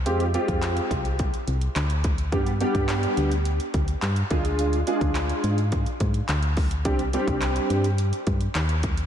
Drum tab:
HH |xxxxxxxxxxxxxxxx|xxxxxxxxxxxxxxxx|xxxxxxxxxxxxxxox|xxxxxxxxxxxxxxxx|
CP |----x-------x---|----x-------x---|----x-------x---|----x-------x---|
BD |---o--o-o-----o-|o--o------o---o-|---o----o-o---o-|o--o------o---o-|